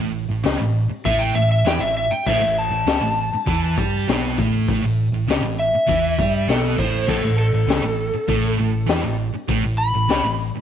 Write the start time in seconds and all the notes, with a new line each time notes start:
0.00 A1 A2
0.29 A1 A2
0.44 C#2 C#3 C#4, snare, open hi-hat
0.58 A1 A2
0.89 muted distorted electric guitar stroke, muted picked electric bass stroke
1.05 A1 A2 A3 E5, kick, open hi-hat
1.19 G5
1.34 A1 A2 E5
1.52 E5
1.64 E2 E3 E4 G5, snare, open hi-hat
1.78 A1 A2 E5
1.84 snare
1.97 E5
2.11 G5, muted distorted electric guitar stroke, muted picked electric bass stroke
2.27 A1 A2 A3 E5, kick, crash
2.40 A1 A2
2.59 A5
2.70 A1 A2
2.86 C#2 C#3 C#4, snare, open hi-hat
3.01 A1 A2
3.33 muted picked electric bass stroke, muted distorted electric guitar stroke
3.46 E2 E3 E4, kick, open hi-hat
3.77 G2 G3 G4, kick
4.07 B1 B2 B3, snare, open hi-hat
4.26 snare
4.38 A1 A2 A3, kick
4.68 A1 A2 A3, kick, open hi-hat
4.82 A1 A2
5.12 A1 A2
5.27 C#2 C#3 C#4, snare, open hi-hat
5.41 A1 A2
5.59 E5
5.73 muted picked electric bass stroke, muted distorted electric guitar stroke
5.86 E2 E3 E4, kick, open hi-hat
6.19 G2 G3 G4, kick
6.47 B1 B2 B3 A4, snare, open hi-hat
6.77 A1 A2 A3 C5, kick
7.08 A1 A2 A3 A4, kick, crash
7.23 A1 A2
7.39 A4
7.53 A1 A2
7.67 C#2 C#3 C#4, snare, open hi-hat
7.83 A1 A2
8.13 muted distorted electric guitar stroke, muted picked electric bass stroke
8.28 A1 A2 A3, kick, open hi-hat
8.59 A1 A2
8.87 E2 E3 E4, snare, open hi-hat
9.02 A1 A2, snare
9.33 muted picked electric bass stroke, muted distorted electric guitar stroke
9.48 A1 A2 A3, kick, open hi-hat
9.64 A1 A2
9.78 B5
9.94 A1 A2
10.09 C#2 C#3 C#4, snare, open hi-hat
10.23 A1 A2
10.53 muted picked electric bass stroke, muted distorted electric guitar stroke